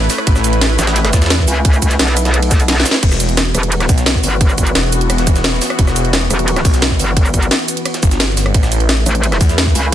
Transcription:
Already playing: A3 E4 B4
0.10 snare, open hi-hat, ride, cabasa
0.18 cross-stick, ride
0.27 A1, kick, closed hi-hat, ride
0.36 cross-stick, snare, cabasa
0.44 closed hi-hat, ride, cabasa
0.53 closed hi-hat
0.61 snare, closed hi-hat, ride
0.79 A1, cross-stick, snare, closed hi-hat, ride, cabasa
0.87 snare, closed hi-hat, ride
0.96 snare, closed hi-hat, ride
1.05 cross-stick, snare, closed hi-hat, ride
1.13 E2, kick, snare, closed hi-hat, ride, cabasa
1.22 snare, closed hi-hat, ride, cabasa
1.26 snare, ride
1.30 snare, closed hi-hat, ride
1.39 kick, snare
1.48 C#2, open hi-hat, ride, cabasa
1.65 kick, closed hi-hat, ride
1.74 cross-stick, cabasa
1.82 kick, closed hi-hat, ride, cabasa
1.91 snare, closed hi-hat, cabasa
1.99 B1, snare, closed hi-hat, ride
2.08 ride
2.17 cross-stick, closed hi-hat, ride, cabasa
2.25 snare, closed hi-hat
2.34 cross-stick, closed hi-hat, ride
2.42 closed hi-hat, ride
2.51 kick, snare, closed hi-hat, cabasa
2.60 closed hi-hat, ride, cabasa
2.68 snare, closed hi-hat, ride
2.77 snare
2.80 snare
2.86 snare, open hi-hat, ride, cabasa
2.91 snare
2.94 snare, ride
3.03 E1 E3 B3 F#4, kick, closed hi-hat, crash, ride
3.11 cross-stick, snare, cabasa
3.20 closed hi-hat, ride, cabasa
3.29 closed hi-hat
3.37 snare, closed hi-hat, ride
3.55 E1, cross-stick, closed hi-hat, ride, cabasa
3.63 closed hi-hat
3.72 closed hi-hat, ride
3.80 cross-stick, snare, closed hi-hat
3.89 B1, kick, closed hi-hat, open hi-hat, cabasa
3.98 snare, closed hi-hat, cabasa
4.06 snare, closed hi-hat, ride
4.15 kick, snare
4.24 G1, open hi-hat, ride, cabasa
4.41 kick, closed hi-hat, ride
4.49 cross-stick, cabasa
4.58 kick, closed hi-hat, ride, cabasa
4.67 closed hi-hat, cabasa
4.75 E1, snare, closed hi-hat, ride
4.92 closed hi-hat, ride, cabasa
5.01 closed hi-hat
5.10 cross-stick, closed hi-hat, ride
5.18 snare, closed hi-hat
5.27 kick, closed hi-hat, ride, cabasa
5.36 snare, closed hi-hat, cabasa
5.44 snare, closed hi-hat, ride
5.62 snare, open hi-hat, ride, cabasa
5.70 cross-stick, ride
5.79 E1, kick, closed hi-hat, ride
5.87 cross-stick, snare, cabasa
5.96 closed hi-hat, ride, cabasa
6.05 closed hi-hat
6.13 snare, closed hi-hat, ride
6.30 E1, cross-stick, closed hi-hat, ride, cabasa
6.39 closed hi-hat
6.48 closed hi-hat, ride
6.56 cross-stick, snare, closed hi-hat
6.65 B1, kick, closed hi-hat, open hi-hat, cabasa
6.74 snare, closed hi-hat, cabasa
6.82 snare, closed hi-hat, ride
6.91 kick, snare
6.99 G1, open hi-hat, ride, cabasa
7.17 kick, closed hi-hat, ride
7.25 cross-stick, cabasa
7.34 kick, closed hi-hat, ride, cabasa
7.42 closed hi-hat, cabasa
7.51 snare, closed hi-hat, ride
7.68 closed hi-hat, ride, cabasa
7.77 closed hi-hat
7.86 cross-stick, closed hi-hat, ride
7.94 snare, closed hi-hat
8.03 G1, kick, closed hi-hat, ride, cabasa
8.11 snare, closed hi-hat, cabasa
8.20 snare, closed hi-hat, ride
8.37 snare, open hi-hat, ride, cabasa
8.46 cross-stick, ride
8.54 A1 A3 E4 B4, kick, closed hi-hat, ride
8.63 cross-stick, snare, cabasa
8.72 closed hi-hat, ride, cabasa
8.80 closed hi-hat
8.89 snare, closed hi-hat, ride
9.06 A1, cross-stick, closed hi-hat, ride, cabasa
9.15 closed hi-hat
9.23 closed hi-hat, ride
9.32 cross-stick, snare, closed hi-hat
9.41 E2, kick, closed hi-hat, open hi-hat, cabasa
9.49 snare, closed hi-hat, cabasa
9.58 snare, closed hi-hat, ride
9.67 kick, snare
9.75 C#2, open hi-hat, ride, cabasa

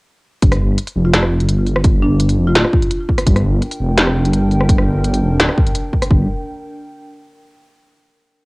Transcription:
0.42 G1, kick, closed hi-hat
0.52 cross-stick, open hi-hat
0.78 closed hi-hat
0.87 open hi-hat
0.96 F1
1.05 F4
1.14 snare, closed hi-hat
1.23 cross-stick
1.40 G1, closed hi-hat
1.49 closed hi-hat
1.67 open hi-hat
1.76 cross-stick
1.84 kick, closed hi-hat
2.02 D4
2.20 closed hi-hat
2.29 open hi-hat
2.38 F1
2.47 F4
2.55 D1, snare, closed hi-hat
2.65 cross-stick
2.73 kick
2.82 closed hi-hat
2.91 closed hi-hat
3.09 kick
3.18 cross-stick, open hi-hat
3.26 G1 D4 A#4 G5, kick, closed hi-hat
3.36 cross-stick, open hi-hat
3.62 closed hi-hat
3.71 open hi-hat
3.80 F1
3.98 snare, closed hi-hat
4.07 cross-stick
4.25 G1, closed hi-hat
4.33 closed hi-hat
4.51 open hi-hat
4.61 cross-stick
4.69 kick, closed hi-hat
4.78 cross-stick
5.04 closed hi-hat
5.14 open hi-hat
5.23 F1
5.40 D1, snare, closed hi-hat
5.49 cross-stick
5.58 kick
5.67 closed hi-hat
5.75 closed hi-hat
5.93 kick
6.02 cross-stick, open hi-hat
6.11 G1 D4 A#4 G5, kick

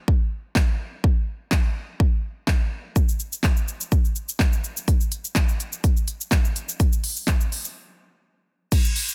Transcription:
0.08 kick
0.55 kick, snare, clap
1.04 kick
1.51 kick, snare, clap
2.00 kick
2.47 kick, snare, clap
2.96 kick, shaker
3.09 shaker
3.20 shaker
3.33 shaker
3.43 kick, snare, clap, shaker
3.57 shaker
3.68 shaker
3.81 shaker
3.92 kick, shaker
4.05 shaker
4.16 shaker
4.29 shaker
4.39 kick, snare, clap, shaker
4.53 shaker
4.64 shaker
4.77 shaker
4.88 kick, closed hi-hat, shaker
5.01 shaker
5.12 closed hi-hat, shaker
5.25 shaker
5.35 kick, snare, clap, closed hi-hat, shaker
5.49 shaker
5.60 closed hi-hat, shaker
5.73 shaker
5.84 kick, closed hi-hat, shaker
5.97 shaker
6.08 closed hi-hat, shaker
6.21 shaker
6.31 kick, snare, clap, closed hi-hat, shaker
6.45 shaker
6.56 closed hi-hat, shaker
6.69 shaker
6.80 kick, closed hi-hat, shaker
6.93 shaker
7.04 open hi-hat, shaker
7.16 shaker
7.27 kick, snare, clap, closed hi-hat, shaker
7.41 shaker
7.52 open hi-hat, shaker
7.65 shaker
8.72 kick, closed hi-hat, crash, tambourine, shaker
8.85 shaker
8.96 open hi-hat, tambourine, shaker
9.09 shaker

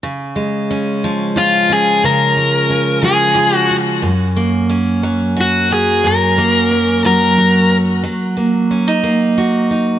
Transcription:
0.03 C#3
0.36 G#3
0.71 C#4
1.04 F3
1.36 F4
1.70 C#4 G#4
2.04 C#3 A#4
2.37 G#3
2.70 C#4
3.03 F3 G#4
3.35 F4
3.57 F#4
3.70 C#4
4.02 F#2
4.36 A#3
4.70 C#4
5.03 F#3
5.37 F#4
5.41 F#4
5.71 C#4 G#4
6.04 F#2 A#4
6.38 A#3
6.71 C#4
7.05 F#3 A#4
7.38 F#4
7.71 C#4
8.04 F#3
8.37 A#3
8.71 C#4
8.88 D#4
9.03 A#3
9.38 F#4
9.71 D#4

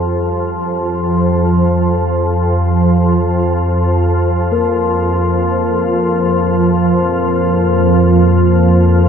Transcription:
Already playing: F2 F3 G3 F4 G4 C5 G5
4.52 F3 A#3 A#4
5.41 A#3

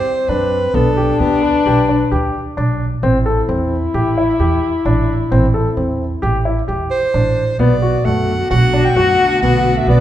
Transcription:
Already playing: C4 C5
0.28 F#2 D4 B4
0.74 B1 B3 D4 A4
0.97 G4
1.19 D2 B3 G4
1.43 B4
1.66 B1 G4
1.89 D4
2.11 D2 G4
2.57 B1 D4
3.03 A1 C4 E4
3.26 A4
3.49 E2 C4
3.94 A1 G4
4.18 E4
4.39 E2 G4
4.85 A1 D4
5.31 A1 C4
5.54 A4
5.77 E2 C4
6.22 A1 G4
6.45 E4
6.68 E2 G4
6.91 C5
7.14 A1 D4
7.59 B1 D3 A3 B3 F#4 D5
7.82 F#4
8.05 F#2 A3 F#5
8.51 B1 F#4 F#5
8.73 D4
8.85 G5
8.96 F#2 F#4 F#5
9.42 B1 B3 F#5
9.78 E5
9.87 B1 B3 D5

